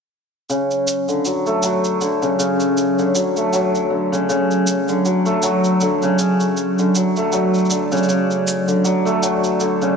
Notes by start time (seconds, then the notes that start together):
0.50 C#3 F#3 C#5, cabasa
0.71 cabasa
0.88 cabasa
1.09 D3, cabasa
1.25 F#3, cabasa
1.46 A3, cabasa
1.63 F#3, cabasa
1.84 cabasa
2.01 D3, cabasa
2.22 C#3, cabasa
2.39 C#3, cabasa
2.60 cabasa
2.77 cabasa
2.98 D3, cabasa
3.15 F#3, cabasa
3.37 A3, cabasa
3.53 F#3, cabasa
3.75 cabasa
3.90 D3
4.12 C#3, cabasa
4.29 C#3, cabasa
4.51 cabasa
4.67 cabasa
4.88 D3, cabasa
5.05 F#3, cabasa
5.25 A3, cabasa
5.42 F#3, cabasa
5.64 cabasa
5.81 D3, cabasa
6.02 C#3, cabasa
6.19 C#3, cabasa
6.40 cabasa
6.57 D5, cabasa
6.79 D3, cabasa
6.95 F#3, cabasa
7.16 A3, cabasa
7.32 F#3, cabasa
7.54 cabasa
7.58 cabasa
7.65 cabasa
7.70 D3, cabasa
7.92 C#3, cabasa
7.97 cabasa
8.03 cabasa
8.08 C#3, cabasa
8.31 cabasa
8.47 cabasa
8.68 D3, cabasa
8.84 F#3, cabasa
9.05 A3, cabasa
9.23 F#3, cabasa
9.44 cabasa
9.60 D3, cabasa
9.82 C#3, cabasa